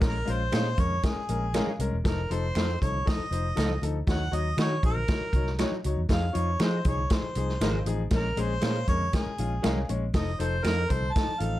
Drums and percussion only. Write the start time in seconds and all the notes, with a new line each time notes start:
0.01 kick, snare, closed hi-hat, muted conga
0.27 closed hi-hat, muted conga
0.52 finger snap, snare, closed hi-hat, high conga
0.78 kick, closed hi-hat, muted conga
0.90 low conga
1.03 kick, snare, closed hi-hat, low conga
1.29 closed hi-hat, low conga
1.53 finger snap, snare, closed hi-hat, high conga
1.67 high conga
1.80 closed hi-hat
2.05 kick, snare, closed hi-hat, muted conga
2.31 closed hi-hat, muted conga
2.55 finger snap, snare, closed hi-hat, high conga
2.82 kick, closed hi-hat, muted conga
2.94 low conga
3.07 kick, snare, closed hi-hat
3.32 closed hi-hat
3.56 finger snap, snare, closed hi-hat, high conga
3.70 high conga
3.83 closed hi-hat
4.07 kick, snare, closed hi-hat, muted conga
4.33 closed hi-hat, muted conga
4.58 finger snap, snare, closed hi-hat, high conga
4.83 kick, closed hi-hat, muted conga
4.96 low conga
5.08 kick, snare, closed hi-hat, low conga
5.33 kick, closed hi-hat, muted conga, low conga
5.46 snare
5.58 finger snap, snare, closed hi-hat, high conga
5.72 high conga
5.84 closed hi-hat
6.09 kick, snare, closed hi-hat, muted conga
6.35 closed hi-hat, muted conga
6.59 finger snap, snare, closed hi-hat, high conga
6.85 kick, closed hi-hat, muted conga
6.98 low conga
7.10 kick, snare, closed hi-hat
7.35 closed hi-hat, muted conga
7.49 snare
7.61 finger snap, snare, closed hi-hat, high conga
7.74 high conga
7.86 closed hi-hat
8.10 kick, snare, closed hi-hat, muted conga
8.36 closed hi-hat, muted conga
8.61 finger snap, snare, closed hi-hat, high conga
8.88 kick, closed hi-hat, muted conga
9.00 low conga
9.13 kick, snare, closed hi-hat, low conga
9.38 closed hi-hat, low conga
9.63 finger snap, snare, closed hi-hat, high conga
9.76 high conga
9.89 closed hi-hat
10.14 kick, snare, closed hi-hat, muted conga
10.40 closed hi-hat, muted conga
10.64 finger snap, snare, closed hi-hat, high conga
10.90 kick, closed hi-hat, muted conga
11.02 low conga
11.16 kick, snare, closed hi-hat
11.40 closed hi-hat, muted conga